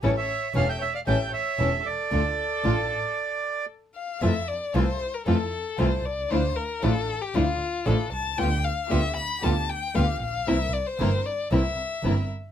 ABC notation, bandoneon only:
X:1
M:4/4
L:1/16
Q:1/4=115
K:Dm
V:1 name="Bandoneon"
^c e3 f g e f g2 e4 d2- | d12 z4 | [K:F] z16 | z16 |
z16 | z16 |]